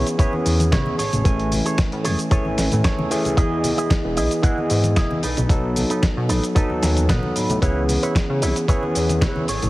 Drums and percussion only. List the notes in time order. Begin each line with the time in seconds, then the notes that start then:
0.07 closed hi-hat, shaker
0.19 kick, closed hi-hat, shaker
0.33 high conga
0.46 open hi-hat, shaker
0.59 closed hi-hat, muted conga, high conga, shaker
0.72 kick, snare, closed hi-hat, shaker
0.86 high conga, low conga
0.99 open hi-hat, shaker
1.13 closed hi-hat, muted conga, low conga, shaker
1.25 kick, closed hi-hat, shaker
1.40 closed hi-hat
1.52 open hi-hat, muted conga, low conga, shaker
1.66 closed hi-hat, shaker
1.78 kick, snare, closed hi-hat, shaker
1.92 closed hi-hat
2.05 open hi-hat, shaker
2.19 closed hi-hat, shaker
2.31 kick, closed hi-hat, shaker
2.45 high conga
2.58 snare, open hi-hat, shaker
2.72 closed hi-hat, high conga, shaker
2.84 kick, snare, closed hi-hat, shaker
2.99 high conga, low conga
3.11 open hi-hat, shaker
3.25 closed hi-hat, muted conga, low conga, shaker
3.37 kick, closed hi-hat, shaker
3.64 open hi-hat, low conga, shaker
3.78 closed hi-hat, shaker
3.90 kick, snare, closed hi-hat, shaker
4.17 open hi-hat, shaker
4.31 closed hi-hat, shaker
4.43 kick, closed hi-hat, shaker
4.58 high conga
4.70 open hi-hat, shaker
4.83 closed hi-hat, muted conga, high conga, shaker
4.96 kick, snare, closed hi-hat, shaker
5.11 high conga, low conga
5.23 open hi-hat, shaker
5.37 closed hi-hat, muted conga, low conga, shaker
5.49 kick, closed hi-hat, shaker
5.76 open hi-hat, muted conga, low conga, shaker
5.90 closed hi-hat, shaker
6.03 kick, snare, closed hi-hat, shaker
6.29 open hi-hat, shaker
6.43 closed hi-hat, shaker
6.56 kick, closed hi-hat, shaker
6.70 high conga
6.83 snare, open hi-hat, shaker
6.97 closed hi-hat, high conga, shaker
7.09 kick, snare, closed hi-hat, shaker
7.23 high conga, low conga
7.36 open hi-hat, shaker
7.49 closed hi-hat, muted conga, low conga, shaker
7.62 kick, closed hi-hat, shaker
7.89 open hi-hat, low conga, shaker
8.03 closed hi-hat, shaker
8.15 kick, snare, closed hi-hat, shaker
8.42 open hi-hat, shaker
8.56 closed hi-hat, shaker
8.68 kick, closed hi-hat, shaker
8.83 high conga
8.95 open hi-hat, shaker
9.09 closed hi-hat, muted conga, high conga, shaker
9.21 kick, snare, closed hi-hat, shaker
9.36 high conga, low conga
9.48 open hi-hat, shaker
9.62 closed hi-hat, muted conga, low conga, shaker